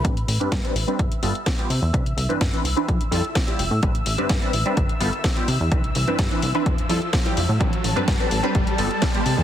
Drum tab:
HH |xxoxxxoxxxoxxxo-|xxoxxxoxxxoxxxo-|xxoxxxoxxxoxxxo-|xxoxxxoxxxoxxxo-|
SD |----o-------o---|----o-------o---|----o-------o---|----o-------o---|
BD |o---o---o---o---|o---o---o---o---|o---o---o---o---|o---o---o---o---|

HH |xxoxxxoxxxoxxxo-|
SD |----o-------o---|
BD |o---o---o---o---|